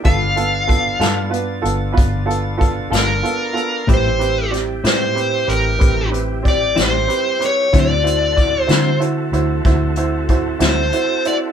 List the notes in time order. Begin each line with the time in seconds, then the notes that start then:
0.04 G1 G3 B3 D4 F4 A4 F5 A5, kick, closed hi-hat
0.08 A4
0.36 B3 F4 A4, closed hi-hat
0.67 B3 F4 A4, kick, closed hi-hat
1.00 G2 G3 B3 F4 A4, snare, closed hi-hat
1.30 B3 F4 B4, closed hi-hat
1.62 G1 B3 F4 A4, closed hi-hat
1.92 B3 F4 B4
1.98 G1, kick, closed hi-hat
2.26 B3 F4 A4
2.30 closed hi-hat
2.58 B3 F4 A4, kick, closed hi-hat
2.90 G1 G3 B3 F4 A4, closed hi-hat
2.95 A#4, snare
3.23 B3 F4 A4, closed hi-hat
3.53 B3 F4 A4, closed hi-hat
3.87 A1 A2 G3 C4 E4 G4 B4, kick, closed hi-hat
3.94 C5
4.19 C4 G4 B4, closed hi-hat
4.50 C4 G4 D5, closed hi-hat
4.55 snare
4.83 A2 G3 C4 E4 G4 B4 C5, snare, closed hi-hat
5.15 C4 G4 B4, closed hi-hat
5.47 A1 C4 G4 A#4 B4, closed hi-hat
5.79 A1 C4 G4 B4, kick, closed hi-hat
6.11 C4 G4 B4, closed hi-hat
6.43 C4 G4 D5, kick, closed hi-hat
6.48 D5
6.75 A1 A2 G3 C4 E4 G4 C5, snare, closed hi-hat
6.83 C5
7.07 C4 G4 B4, closed hi-hat
7.39 C4 G4 B4, closed hi-hat
7.45 C#5
7.73 D2 D3 F#3 C4 E4 F#4 A4 C5, kick, closed hi-hat
7.80 D5
8.04 E4 F#4 C5, closed hi-hat
8.36 E4 F#4 D5, kick, closed hi-hat
8.62 C5
8.67 D3 C4 E4 F#4 C5, snare, closed hi-hat
8.72 D3 F#3
9.00 E4 F#4 C5, closed hi-hat
9.32 D2 E4 F#4 C5, closed hi-hat
9.65 D2 E4 F#4 C5, kick, snare, closed hi-hat
9.96 E4 F#4 C5, closed hi-hat
10.29 E4 F#4 C5, kick, closed hi-hat
10.59 D2 F#3 C4 E4 F#4 C5, snare, closed hi-hat
10.63 D3
10.68 C5
10.92 E4 F#4 C5, closed hi-hat
11.25 E4 F#4 C5 D5, closed hi-hat